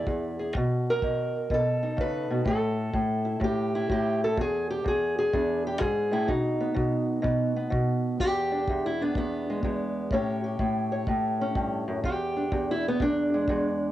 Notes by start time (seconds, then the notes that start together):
Already playing: E4 G#4 D5
0.07 E2, kick
0.39 G#4
0.55 B2, kick
0.90 A#4
1.02 B2, kick
1.50 B2 A4, kick
1.83 D#4
1.97 C#3 B4, kick
2.31 B2
2.45 A2 A4, kick
2.93 A2, kick
3.25 E4
3.40 A2, kick
3.44 G4
3.75 E4
3.89 A2 G4, kick
4.24 A4
4.37 E2 G#4, kick
4.71 G4
4.84 E2 G#4, kick
5.19 G#4
5.33 E2 D4, kick
5.67 G4
5.80 G#2 G#4, kick
6.11 A2 E4
6.28 B2 D#4, kick
6.60 B3
6.74 B2, kick
7.22 B2 B3, kick
7.56 B3
7.70 B2, kick
8.20 E2 G4, kick
8.52 D4
8.68 E2, kick
8.86 E4
9.01 B3 D4
9.15 E2 B3, kick
9.50 G#3
9.63 E2 G#3, kick
10.11 A2 C#4 G4 C#5, kick
10.44 G4
10.59 A2, kick
10.92 C#5
11.07 A2, kick
11.41 C#4
11.55 G2, kick
11.88 F#2
12.03 E2 G4, kick
12.36 D4
12.52 E2, kick
12.71 E4
12.88 B3
13.00 E2 D4, kick
13.34 G#3
13.48 E2 G#3, kick